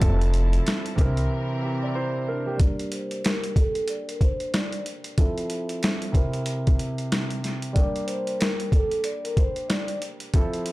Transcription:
Already playing: A5
0.00 F1 F3 C4 E4 A4, kick, closed hi-hat
0.21 closed hi-hat
0.34 closed hi-hat
0.53 closed hi-hat
0.67 snare, closed hi-hat
0.86 closed hi-hat
0.96 C2 C3 E3 C4 D4 A#4, kick, closed hi-hat
1.00 A#4
1.05 E4
1.17 closed hi-hat
1.62 G4 E5
1.83 D5
1.95 E4 C5
2.28 D4 A#4
2.46 A#3 G4
2.57 G3 D4 G4 D5, kick, closed hi-hat
2.62 A#3
2.79 closed hi-hat
2.92 C5, closed hi-hat
3.11 closed hi-hat
3.24 A#4, snare, closed hi-hat
3.44 closed hi-hat
3.56 A4, kick, closed hi-hat
3.75 closed hi-hat
3.88 D5, closed hi-hat
4.08 A#4, closed hi-hat
4.21 C5, kick, closed hi-hat
4.40 closed hi-hat
4.53 D5, snare, closed hi-hat
4.72 closed hi-hat
4.86 closed hi-hat
5.04 closed hi-hat
5.18 F3 C4 E4 A4, kick, closed hi-hat
5.38 closed hi-hat
5.50 closed hi-hat
5.69 closed hi-hat
5.83 snare, closed hi-hat
6.02 closed hi-hat
6.12 C3 C4 E4, kick, closed hi-hat
6.17 A#4
6.33 closed hi-hat
6.46 closed hi-hat
6.67 kick, closed hi-hat
6.79 closed hi-hat
6.98 closed hi-hat
7.12 snare, closed hi-hat
7.30 closed hi-hat
7.44 snare, closed hi-hat
7.62 closed hi-hat
7.73 G3 D4 G4 D5, kick, closed hi-hat
7.78 A#3
7.96 closed hi-hat
8.06 C5, closed hi-hat
8.27 closed hi-hat
8.39 A#4, snare, closed hi-hat
8.60 closed hi-hat
8.72 A4, kick, closed hi-hat
8.91 closed hi-hat
9.04 D5, closed hi-hat
9.24 A#4, closed hi-hat
9.37 C5, kick, closed hi-hat
9.56 closed hi-hat
9.69 D5, snare, closed hi-hat
9.88 closed hi-hat
10.02 closed hi-hat
10.20 closed hi-hat
10.34 F3 C4 E4 A4, kick, closed hi-hat
10.54 closed hi-hat
10.66 closed hi-hat

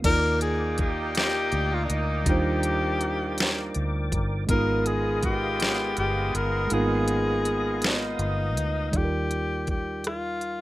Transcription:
0.02 D#2 A#2 A#3 D#4 A#4 D5 G5 D6, kick, closed hi-hat, crash
0.08 F4 A#4
0.41 G#4, closed hi-hat
0.78 G4, kick, closed hi-hat
1.15 G4, snare, closed hi-hat
1.52 D2, closed hi-hat
1.74 F4
1.85 D4
1.90 D2 D#4, closed hi-hat
2.24 D#2 G3 D4 D#4, kick, closed hi-hat
2.29 F4 G4 C5
2.63 closed hi-hat
3.01 closed hi-hat
3.38 snare, closed hi-hat
3.75 D2, closed hi-hat
4.12 G1, kick, closed hi-hat
4.47 G#1 G#3 B3 D#4 F4 A#4 D#5 F5 D#6, kick, closed hi-hat
4.52 F4 A#4
4.86 G#4, closed hi-hat
5.23 G4, kick, closed hi-hat
5.60 snare, closed hi-hat
5.97 G1 G4, closed hi-hat
6.35 G1 A#4, closed hi-hat
6.67 G#3 A#3, closed hi-hat
6.72 G#1 D#4 F4 G#4 A#4
6.76 B3
7.08 closed hi-hat
7.45 closed hi-hat
7.82 snare, closed hi-hat
7.86 D#4
8.19 G1, closed hi-hat
8.57 D2, closed hi-hat
8.91 D#2 G3 D#4 D5, kick, closed hi-hat
8.96 F4 G4 A4
9.04 A#4
9.31 closed hi-hat
9.67 G4, kick, closed hi-hat
10.04 F4, cross-stick, closed hi-hat
10.41 closed hi-hat

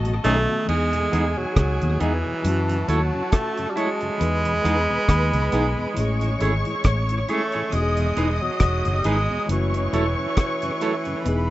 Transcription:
Already playing: A1 D#3 A3 B3 C#4 F#4 A4 D#5 A5
0.05 B2 F#3, closed hi-hat
0.23 B1 D#3 A3 B3 C#4 D#4 G#4 A4, closed hi-hat
0.49 B2 F#3
0.65 E2 E3 G#3 B3 G#4 G#5, crash
0.70 D#4 G#4
0.93 E2 B2, closed hi-hat
1.12 E2 E3 G#3 B3 D#4 G#4, closed hi-hat
1.37 E2 B2 F#3
1.56 C#2, kick, cross-stick, closed hi-hat
1.82 D#2 E2 B2, closed hi-hat
2.00 E2 E3 G#3 B3 D#4 G#4, closed hi-hat
2.25 E2 B2
2.42 F#2 E3 G#3 C#4 F#4 A5, closed hi-hat
2.48 F#3 F#4
2.69 F#2 C#3, muted clean electric guitar stroke, closed hi-hat
2.88 D#2 F#3 A3 E4 A4 C#5, closed hi-hat
3.14 F#2 C#3
3.32 A3, kick, cross-stick, closed hi-hat
3.57 F#2 C#3, closed hi-hat
3.70 G3
3.76 F#3 G#3 A3 E4 A4 C#5, closed hi-hat
4.01 F#2 C#3, muted clean electric guitar stroke, closed hi-hat
4.18 E2 E3 B3 B4 B5, closed hi-hat
4.22 D#4 G#4
4.45 E2 B2, closed hi-hat
4.64 E2 E3 G#3 B3 D#4 G#4, closed hi-hat
4.90 E2 B2
5.09 D#2, kick, cross-stick, closed hi-hat
5.33 C#2 E2 B2, closed hi-hat
5.52 B1 E3 G#3 B3 D#4 G#4, closed hi-hat
5.78 E2 B2
5.94 A1 E3 C#5 C#6, closed hi-hat
5.98 C#4 G#4
6.21 A2 E3, closed hi-hat
6.41 G#1 G#3 A3 C#4 E4 G#4 C#5, closed hi-hat
6.65 A2 E3, closed hi-hat
6.84 A1, kick, cross-stick, closed hi-hat
7.09 A2 E3, closed hi-hat
7.28 G#3 A3 C#4 E4 G#4 C#5, closed hi-hat
7.52 A2 E3 E4 G#4 C#5, closed hi-hat
7.70 E1 E3 G#3 B3 D#5 D#6, closed hi-hat
7.74 D#4 F#4
7.82 G#4
7.97 E2 B2, closed hi-hat
8.17 E1 E3 G#3 D#4 G#4 B4, closed hi-hat
8.42 E2 B2 F#3
8.60 E1, kick, cross-stick, closed hi-hat
8.85 F#1 E2 B2, closed hi-hat
8.98 G3
9.04 G#1 E3 G#3 D#4 G#4 B4, closed hi-hat
9.31 E2 B2
9.46 F#1 E3 A3 C#4 C#5 C#6, closed hi-hat
9.50 E3 F#4
9.74 F#2 C#3, muted clean electric guitar stroke, closed hi-hat
9.93 E1 F#3 A3 E4 A4 C#5, closed hi-hat
10.19 F#2 C#3
10.37 kick, cross-stick, closed hi-hat
10.62 F#2 C#3, closed hi-hat
10.81 F#3 A3 E4 A4 C#5, closed hi-hat
11.05 F#2 C#3, muted clean electric guitar stroke, closed hi-hat
11.22 E1 E3 B3 B4 B5, closed hi-hat
11.26 D#4 G#4

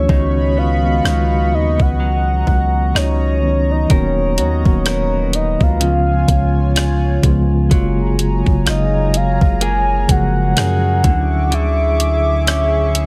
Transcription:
Already playing: E3 F#3 A3 C#4 D4 F#4 C#5 C#6
0.08 C#2 C#3 D#3 G#3 B3 C#4 D#4 D#5 B5, kick
0.12 F#4
0.57 B3 F5
0.83 D#3 G#3 B3 C#4
0.87 F#4
1.04 C#2 F#3 B3 D#4, cross-stick
1.52 D#2 D#5
1.79 C#2 F#5, kick
2.00 F#3 A#5
2.47 C#2, kick
2.95 C#2 D#4 C#5, cross-stick
3.41 D#3 G#3 B3 C#4
3.45 D#4
3.71 D#5
3.88 D#1 D#3 F#3 A#3 B3 A#4 C#5 D#5, kick, closed hi-hat
3.92 F#4
4.38 D#2 F#4 C#5, closed hi-hat
4.64 D#1 D#3 F#3 A#3 B3 F#4, kick
4.85 B3 F#4 A#4, cross-stick, closed hi-hat
5.33 D#5, closed hi-hat
5.61 C#2 F5, kick
5.78 C#3 F3 G#3 B3 F4 C#5 G#5, closed hi-hat
5.83 F4
6.28 C#2, kick, closed hi-hat
6.76 F4, cross-stick, closed hi-hat
7.22 C#2 C#3 F3 G#3 B3, kick, closed hi-hat
7.26 F4
7.69 F#1 C#3 F#3 G#3 A#3 G#4 C#5 G#5 A#5, kick, closed hi-hat
7.74 F4
8.19 closed hi-hat
8.46 F#1, kick
8.66 F#1 F4 D#5, cross-stick, closed hi-hat
9.14 F5, closed hi-hat
9.41 F#1, kick
9.61 A#3 G#4 G#5, closed hi-hat
10.07 F#1 C#3 F#3 G#3 A#3 F#5, kick, closed hi-hat
10.11 F3
10.56 F#2 A#3 G#4, cross-stick, closed hi-hat
11.02 D2 D3 F3 A3 C#4 E5 C#6 D6, kick, closed hi-hat
11.06 F#3 E4
11.51 D3 E5, closed hi-hat
12.00 closed hi-hat
12.47 C#4, cross-stick, closed hi-hat
12.95 E6, closed hi-hat

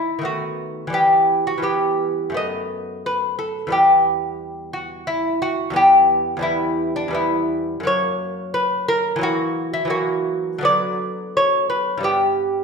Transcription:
Already playing: D#3 A3 B3 E4
0.19 D#3 A3
0.23 B3 F#4
0.87 E3 G3
0.93 B3 G4
1.47 F#4
1.58 E3 G3
1.62 B3 G4
2.30 F#2 A3
2.34 B3 D#5
3.06 B4
3.39 A4
3.67 E2 G3 B3
3.72 G4
4.73 F#4
5.07 E4
5.42 F#4
5.70 E2 G3 B3
5.76 G4
6.37 E2 G3
6.41 B3 E4
6.96 D4
7.08 E2 G3
7.13 B3 E4
7.80 F#2 F#3
7.85 A#3 C#5
8.54 B4
8.88 A#4
9.16 E3 F#3
9.21 A#3 F#4
9.74 E4
9.85 E3 F#3
9.90 A#3 F#4
10.58 D3 F#3
10.63 B3 D5
11.37 C#5
11.70 B4
11.98 G2 G3
12.03 B3 G4

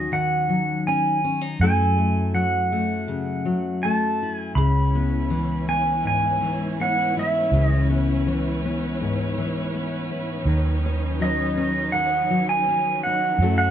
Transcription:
Already playing: D#2 D#3 F#3 C#4 D#4 F#4 D#5
0.12 D#3 F#5
0.49 F#3
0.87 C#4 G#5
1.24 C#4
1.41 D#4
1.60 F#2 F#3 A3 E4 A4 G#5
1.97 A3
2.34 F#3 F#5
2.72 A3
3.08 C#3
3.45 F#3
3.83 A3 A5
4.22 E4
4.36 G#5
4.55 C#2 C#3 G#3 C#4 E4 B4 C#5 B5
4.95 B3
5.30 E3
5.68 B3 G#5
6.03 G#2 G#5
6.42 E3
6.80 B3 F#5
7.17 E4 E5
7.52 C#2 C#3
7.66 D#5
7.90 B3
8.26 E3
8.65 B3
9.01 G#2
9.38 E3
9.74 B3
10.11 E4
10.45 D#2 D#3 F#3 D#4
10.86 C#4
11.20 F#3 D#5
11.57 C#4
11.92 D#3 F#5
12.30 F#3
12.49 G#5
12.68 C#4
13.03 D#4 F#5
13.39 F#2 F#3 A3 C#4 E4 A4 C#5
13.44 A4
13.58 F#5

